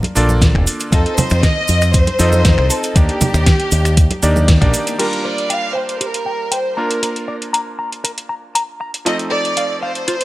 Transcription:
Already playing: A#3 D4 F4 A#4 D5
0.03 closed hi-hat, high conga
0.15 A#1 A#3 D4 F4 A4 D5, open hi-hat, maracas
0.29 high conga, maracas
0.42 kick, snare, closed hi-hat, maracas
0.55 F1, finger snap, kick
0.67 open hi-hat, maracas
0.80 closed hi-hat, maracas
0.92 F2 C4 D#4 F4 A4 D#5, kick, closed hi-hat, maracas
1.06 closed hi-hat
1.18 C5, open hi-hat, high conga, low conga, maracas
1.30 F2, finger snap, closed hi-hat, maracas
1.43 D#5, kick, snare, closed hi-hat, maracas
1.68 F2, open hi-hat, maracas
1.82 finger snap, closed hi-hat, maracas
1.93 C5, kick, closed hi-hat, maracas
2.07 closed hi-hat, high conga
2.19 F2 C4 D#4 F4 A4 D#5, open hi-hat, maracas
2.33 high conga, maracas
2.45 kick, snare, closed hi-hat, maracas
2.58 C2, finger snap
2.70 A4, open hi-hat, maracas
2.83 closed hi-hat, maracas
2.95 D#2 A#3 D4 D#4 G4 D5, kick, closed hi-hat, maracas
3.09 closed hi-hat
3.21 open hi-hat, high conga, low conga, maracas
3.34 D#2, finger snap, closed hi-hat, maracas
3.46 kick, snare, closed hi-hat, maracas
3.60 closed hi-hat
3.71 D#2, open hi-hat, maracas
3.85 finger snap, closed hi-hat, maracas
3.97 kick, closed hi-hat, maracas
4.11 closed hi-hat, high conga
4.22 D#2 A#3 D4 D#4 G4 D5, open hi-hat, maracas
4.36 high conga, maracas
4.48 kick, snare, closed hi-hat, maracas
4.61 A#1 A#3 D4 D#4 G4 D5, finger snap, kick, closed hi-hat
4.74 open hi-hat, maracas
4.87 closed hi-hat, maracas
4.98 G3 A#3 D4 F4 G4 A#4, closed hi-hat, crash
5.13 closed hi-hat
5.24 C5 D5
5.38 closed hi-hat
5.50 F5 G5, closed hi-hat
5.75 C5 G5
5.89 closed hi-hat
6.01 G4 A#4, closed hi-hat
6.14 closed hi-hat
6.26 G5
6.52 C5 G5, closed hi-hat
6.77 A#3 D4 F4 A#4 A#5
6.91 closed hi-hat
7.02 A#4, closed hi-hat
7.16 closed hi-hat
7.28 D5
7.42 closed hi-hat
7.53 A#5, closed hi-hat
7.79 A#5
7.92 closed hi-hat
8.04 A#4, closed hi-hat
8.18 closed hi-hat
8.29 A#5
8.55 A#5, closed hi-hat
8.81 A#5
8.94 closed hi-hat
9.05 F3 A3 C4 D#4 F4 A4 D#5, closed hi-hat
9.19 closed hi-hat
9.32 A4 D5
9.45 closed hi-hat
9.57 F5, closed hi-hat
9.83 C5 F5
9.95 closed hi-hat
10.08 F4, closed hi-hat
10.21 closed hi-hat

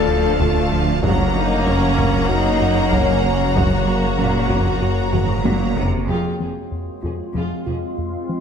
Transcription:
Already playing: D1 D2 A3 D4 F4 A4 D5 F5 A5 A6
0.08 D2 F3 D4
0.40 D2 D3 A3 F4, taiko
0.71 D2 F3
1.02 F#1 F#2 F#3 A#3 F#4 C#5 F#5 A#5, taiko
1.35 F#3 D#4
1.66 F#3 C#4, taiko low
1.97 F#2 F#3, taiko
2.29 F#2 A#3 D#4 F#4
2.60 F#2 F#4
2.91 F#2 F#3 C#4, taiko
3.23 F#2 A#3
3.55 F#2 F#3 A#3 F#4 F#5, taiko
3.87 F#3
4.18 A#2 F#3 C#4, taiko low
4.50 F2 F#2 F#4, taiko
4.82 F#2 F#4
5.13 F#2 G#2 F#4, taiko mid
5.45 F#2 A#2 F#3, taiko high
5.76 F#2 C3 A#3, taiko low
6.07 F1 F2 F3 G#3 C4 F4 G#4 F5 G5 C6
6.40 F1 F2 F3 C4 G#4
6.72 F2
7.03 F1 F2 F4 G#4
7.34 F1 F2 F3 F4 G#4
7.66 F1 F2 F4 G#4
7.98 F2
8.29 F3

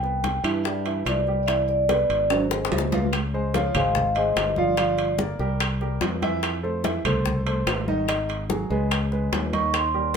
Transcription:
Already playing: C2 G5
0.03 B3 B4, high bongo, high conga
0.24 high bongo, high conga, high timbale, low timbale
0.44 G2 E3 E4, high conga, high timbale, claves
0.64 G3 G4 E5, high bongo, high conga
0.85 E3 E4, high bongo, high conga, high timbale
1.05 C2 D5, high bongo, low bongo, high timbale, low timbale, claves
1.27 G3 G4, high conga
1.43 D5 E5
1.47 E3 E4, high bongo, high conga, high timbale, claves
1.68 D5, high bongo, high conga
1.89 B3 B4, high bongo, high conga, high timbale, low timbale
2.10 G#1 D5, high conga, high timbale
2.30 F#3 F#4 C5, high bongo, high conga, high timbale, claves
2.51 G#3 G#4, high bongo, high conga
2.65 high bongo
2.72 C#2, high conga, low timbale
2.78 low bongo
2.92 F4 F5, low bongo, high conga, low timbale
3.13 high bongo, high timbale, claves
3.34 G#3 G#4 C5, high conga
3.54 F3 F4 C#5 F5, high bongo, high conga, high timbale, low timbale
3.75 G#1 G#3 G#4 C5 F5, high conga, low conga, high timbale, claves
3.95 high bongo, high conga, low conga
4.15 G#3 G#4 C5 D#5, high conga, high timbale
4.36 G1, high bongo, low bongo, high conga, high timbale, low timbale, claves
4.56 F3 F4 D5 F5, high conga
4.77 F3 F4 F5, high bongo, high conga, high timbale, claves
4.98 high bongo, high conga, high timbale
5.19 A#3 A#4 D5, high bongo, high conga, low timbale
5.39 C2 G3 G4 A#4, high bongo, high conga
5.60 high bongo, high conga, high timbale, claves
5.81 G3 G4 A#4, high bongo, high conga
6.01 F2, high bongo, low bongo, high conga, high timbale, low timbale
6.22 E3 E4 E5, high conga, high timbale
6.43 high bongo, high conga, high timbale, claves
6.63 A3 A4 C5, high conga
6.84 E3 E4 E5, high bongo, high conga, high timbale, low timbale
7.05 C2 A3 A4 C5, high conga, low conga, high timbale, claves
7.26 high bongo, high conga, low conga
7.46 A3 A4 C5, high conga, high timbale
7.67 G#1, high bongo, low bongo, high conga, high timbale, low timbale, claves
7.88 D#3 D#4 D#5, high conga
8.08 D#3 D#4 D#5, high bongo, high timbale, claves
8.29 high bongo, high conga, high timbale
8.50 F#3 F#4 G#4, high bongo, high conga, low timbale
8.70 C#2 G#3 G#4 B4, high bongo, high conga
8.91 high bongo, high conga, high timbale, claves
9.12 G#3 G#4 B4, high bongo, high conga
9.33 D#2, high bongo, low bongo, high conga, high timbale, low timbale
9.53 D#3 D#4 D#5 C#6, high conga, high timbale
9.74 C6, high bongo, high conga, high timbale, claves
9.94 G3 G4 A#4, high conga

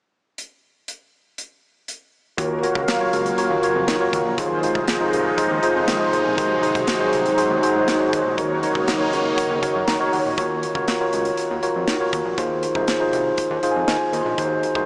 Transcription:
0.38 closed hi-hat
0.88 closed hi-hat
1.38 closed hi-hat
1.88 closed hi-hat
2.37 D#2 C#3 D#3 F#3 A#3 F4 F#4 A#4 C#5 F5, kick, closed hi-hat
2.62 F4 F#4 A#4 C#5, closed hi-hat
2.75 C#2, kick
2.88 snare, closed hi-hat
3.00 F4 F#4 A#4 C#5
3.13 C#2, closed hi-hat
3.26 closed hi-hat
3.37 F4 F#4 A#4 C#5, closed hi-hat
3.50 D#2
3.63 F4 F#4 A#4 C#5, closed hi-hat
3.75 F2
3.87 D#3, snare, closed hi-hat
4.00 F4 F#4 A#4 C#5
4.13 D#2, kick, closed hi-hat
4.25 A#1
4.37 D#2 C3 D#3 F3 G#3 D#4 F4 G#4 C5, kick, closed hi-hat
4.63 D#4 F4 G#4 C5, closed hi-hat
4.75 C2, kick
4.88 snare, closed hi-hat
5.00 D#4 F4 G#4 C5
5.13 C2, closed hi-hat
5.38 D#4 F4 G#4 C5, kick, closed hi-hat
5.51 D#2
5.62 D#4 F4 G#4 C5, closed hi-hat
5.76 F2
5.88 D#3, snare, closed hi-hat
6.00 D#4 F4 G#4 C5
6.13 D#2, closed hi-hat
6.25 A#1
6.37 D#2 D#3 F#3 D#4 F#4 G#4 C5, kick, closed hi-hat
6.62 D#4 F#4 G#4 C5, closed hi-hat
6.75 C2, kick, closed hi-hat
6.87 snare, closed hi-hat
6.99 D#4 F#4 G#4 C5
7.13 C2, closed hi-hat
7.25 closed hi-hat
7.37 D#4 F#4 G#4 C5, closed hi-hat
7.51 D#2
7.62 D#4 F#4 G#4 C5, closed hi-hat
7.75 G#2
7.88 D#3, snare, closed hi-hat
8.00 D#4 F#4 G#4 C5
8.13 D#2, kick, closed hi-hat
8.25 A#1
8.38 D#2 C#3 D#3 A#3 D#4 F#4 A#4 C#5, kick, closed hi-hat
8.62 D#4 F#4 A#4 C#5, closed hi-hat
8.75 C#2, kick
8.88 snare, closed hi-hat
9.00 D#4 F#4 A#4 C#5
9.13 C#2, closed hi-hat
9.37 D#4 F#4 A#4 C#5, kick, closed hi-hat
9.51 D#2
9.62 D#4 F#4 A#4 C#5, kick, closed hi-hat
9.76 F#2
9.88 D#3 A#5, snare, closed hi-hat
9.99 D#4 F#4 A#4 C#5
10.13 D#2 F#5, open hi-hat
10.26 A#1
10.37 D#2 D#3 F4 F#4 A#4 C#5, kick, closed hi-hat
10.63 closed hi-hat
10.75 C#2 F4 F#4 A#4 C#5, kick
10.88 snare, closed hi-hat
11.00 F4 F#4 A#4 C#5
11.13 C#2, closed hi-hat
11.25 closed hi-hat
11.37 closed hi-hat
11.51 D#2
11.62 F4 F#4 A#4 C#5, closed hi-hat
11.76 F2
11.88 D#3, snare, closed hi-hat
12.00 F4 F#4 A#4 C#5
12.13 D#2, kick, closed hi-hat
12.25 A#1
12.37 D#2 D#3 D#4 F4 G#4 C5, kick, closed hi-hat
12.63 closed hi-hat
12.75 C2 D#4 F4 G#4 C5, kick
12.88 snare, closed hi-hat
13.00 D#4 F4 G#4 C5
13.13 C2, closed hi-hat
13.38 kick, closed hi-hat
13.50 D#2
13.63 D#4 F4 G#4 C5 F5, closed hi-hat
13.71 G#5
13.76 F2
13.88 D#3 G#5, snare, closed hi-hat
14.13 D#2 D#5, closed hi-hat
14.22 A#1 C6
14.38 D#2 D#3 D#4 F#4 G#4 C5, kick, closed hi-hat
14.63 closed hi-hat
14.75 C2 D#4 F#4 G#4 C5, kick

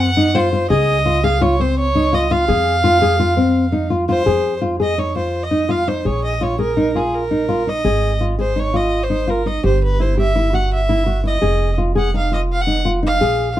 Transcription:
Already playing: F#2
0.00 F#5
0.17 D#4
0.35 F4 C5
0.53 F4
0.70 C#2 G#4 D#5
1.06 F4
1.24 G#4 F5
1.41 F4 C#5
1.59 C4 C5
1.79 C#5
1.95 D#4
2.13 F4 D#5
2.31 F4 F5
2.48 F2 G#4
2.84 F4
3.02 G#4
3.19 F4
3.37 C4
3.72 D#4
3.90 F4
4.09 F4 C5
4.26 F2 G#4
4.61 F4
4.80 G#4 D#5
4.98 D#4 C#5
5.16 F4 C5
5.43 D#5
5.51 D#4
5.69 F4 F5
5.88 D#4 C5
6.05 A#1 G#4 C#5
6.24 D#5
6.41 F4 C#5
6.59 G#4 A#4
6.77 D#4
6.95 F4 G#4
7.14 A#4
7.31 D#4
7.49 F4
7.67 D#4 D#5
7.85 G#1 G#4
8.21 F4
8.39 G#4 C5
8.56 D#4 C#5
8.74 F4 D#5
9.03 C5
9.10 D#4
9.27 F4 A#4
9.46 D#4 D#5
9.64 G1 G4 C5
9.84 B4
10.00 E4 C5
10.18 G4 E5
10.36 E4
10.53 F#4 F#5
10.74 E5
10.89 E4
11.06 F#4
11.24 E4 D#5
11.42 F1 G#4
11.78 F4
11.95 G#4 F#5
12.14 D#4 F5
12.32 F4 D#5
12.52 F5
12.61 F#5
12.67 D#4
12.85 F4
13.03 D#4 F5
13.21 A#1 G#4

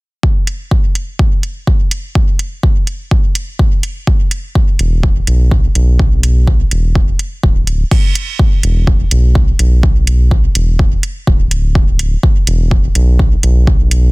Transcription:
0.23 kick
0.47 closed hi-hat
0.71 kick
0.95 closed hi-hat
1.19 kick
1.43 closed hi-hat
1.67 kick
1.91 closed hi-hat
2.15 kick
2.39 closed hi-hat
2.63 kick
2.87 closed hi-hat
3.11 kick
3.35 closed hi-hat
3.59 kick
3.83 closed hi-hat
4.07 kick
4.31 closed hi-hat
4.55 kick
4.79 E1, closed hi-hat
5.03 kick
5.27 B1, closed hi-hat
5.51 kick
5.75 B1, closed hi-hat
5.99 kick
6.23 closed hi-hat
6.47 kick
6.71 E1, closed hi-hat
6.95 kick
7.19 closed hi-hat
7.43 D1, kick
7.67 closed hi-hat
7.91 kick, crash
8.15 closed hi-hat
8.39 kick
8.63 E1, closed hi-hat
8.87 kick
9.11 B1, closed hi-hat
9.35 kick
9.59 B1, closed hi-hat
9.83 kick
10.07 closed hi-hat
10.31 kick
10.55 E1, closed hi-hat
10.79 kick
11.03 closed hi-hat
11.27 D1, kick
11.51 closed hi-hat
11.75 kick
11.99 closed hi-hat
12.23 kick
12.47 E1, closed hi-hat
12.71 kick
12.95 B1, closed hi-hat
13.19 kick
13.43 B1, closed hi-hat
13.67 kick
13.91 closed hi-hat

